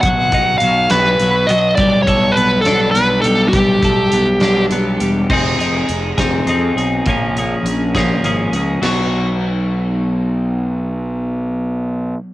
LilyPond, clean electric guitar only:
\new Staff \with { instrumentName = "Clean electric guitar" } { \time 6/8 \key b \lydian \tempo 4. = 68 <fis b>8 dis'8 fis8 b8 fis8 fis8 | g8 a'8 b8 d'8 b8 g8 | g8 a'8 b8 d'8 b8 g8 | <c' ees' aes'>8 <ees' aes'>4 <c' ees' aes'>8 <c' ees' aes'>8 <ees' aes'>8 |
<eis ais cis' gis'>8 <ais cis' gis'>4 <eis ais cis' gis'>8 <eis ais cis' gis'>8 <ais cis' gis'>8 | <fis b dis' fis'>2.~ | <fis b dis' fis'>2. | }